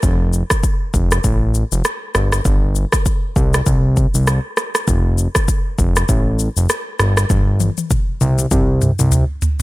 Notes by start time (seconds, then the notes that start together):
0.03 F1, kick, shaker
0.33 shaker
0.50 kick, cross-stick, shaker
0.63 kick, shaker
0.94 F1, kick, shaker
1.11 cross-stick, shaker
1.24 A1, kick, shaker
1.54 shaker
1.72 F1, shaker
1.85 cross-stick, shaker
2.15 G1, cross-stick, shaker
2.32 cross-stick, shaker
2.45 G1, kick, shaker
2.75 shaker
2.92 kick, cross-stick, shaker
3.06 kick, shaker
3.36 C2, kick, shaker
3.54 cross-stick, shaker
3.66 C2, kick, shaker
3.97 kick, shaker
4.14 C2, shaker
4.27 cross-stick, shaker
4.57 cross-stick, shaker
4.75 cross-stick, shaker
4.88 F1, kick, shaker
5.18 shaker
5.35 kick, cross-stick, shaker
5.48 kick, shaker
5.79 F1, kick, shaker
5.96 cross-stick, shaker
6.09 A1, kick, shaker
6.39 shaker
6.57 F1, shaker
6.69 cross-stick, shaker
7.00 G1, cross-stick, shaker
7.17 cross-stick, shaker
7.30 G1, kick, high tom, shaker
7.60 high tom, shaker
7.78 high tom, shaker
7.91 kick, mid tom, shaker
8.21 C2, mid tom, shaker
8.39 mid tom, shaker
8.51 C2, kick, mid tom, shaker
8.82 mid tom, shaker
8.99 C2, mid tom, shaker
9.12 floor tom, shaker
9.42 floor tom, shaker